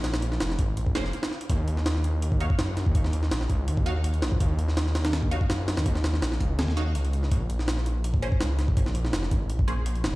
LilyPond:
<<
  \new Staff \with { instrumentName = "Synth stab" } { \time 4/4 \key ees \dorian \tempo 4 = 165 r2 r8 <bes des' aes' c''>8 r4 | r2 r8 <ees' ges' des'' f''>8 r4 | r2 r8 <ees' ges' des'' f''>8 r4 | r2 r8 <ees' ges' des'' f''>8 r4 |
r2 r8 <ees' ges' des'' f''>8 r4 | r2 r8 <bes des' aes' c''>8 r4 | r2 r8 <bes des' aes' c''>8 r4 | }
  \new Staff \with { instrumentName = "Detuned saw bass" } { \clef bass \time 4/4 \key ees \dorian bes,,4 f,,8 aes,,8 bes,,8 f,,8 r4 | ees,2~ ees,8. r16 ges,8. ees,16~ | ees,4 bes,,8 des,8 ees,4. bes,,8 | ees,2~ ees,8. r16 ges,8. ees,16~ |
ees,4 bes,,8 des,8 ees,4 des,4 | bes,,2~ bes,,8. r16 des,8. bes,,16~ | bes,,4 f,,8 aes,,8 bes,,4. f,,8 | }
  \new DrumStaff \with { instrumentName = "Drums" } \drummode { \time 4/4 <hh sn>16 <hh sn>16 hh16 sn16 <hh sn>16 sn16 <hh bd>8 hh16 bd16 <hh sn>16 sn16 hh16 <hh sn>16 sn16 hh16 | <hh bd>8 hh16 sn16 <hh sn>16 sn16 hh8 hh16 bd16 hh16 bd16 <hh sn>8 <hh sn>16 bd16 | <hh bd>16 sn16 hh16 sn16 <hh sn>16 sn16 <hh bd>8 hh16 bd16 hh8 hh16 hh16 <hh sn>16 bd16 | <hh bd>8 hh16 sn16 <hh sn>16 sn16 <hh sn>16 <hh sn>16 <hh sn>16 bd16 hh16 bd16 <hh sn>8 <hh sn>16 <hh sn>16 |
<hh bd>16 sn16 <hh sn>16 sn16 <hh sn>16 sn16 <hh bd>8 <hh sn>16 sn16 hh8 hh16 hh16 hh16 sn16 | <hh bd>8 hh16 sn16 <hh sn>16 sn16 hh8 hh16 bd16 hh16 bd16 <hh sn>8 <hh sn>16 bd16 | <hh bd>16 sn16 hh16 sn16 <hh sn>16 sn16 <hh bd>8 hh16 bd16 hh8 hh16 hh16 <hh sn>8 | }
>>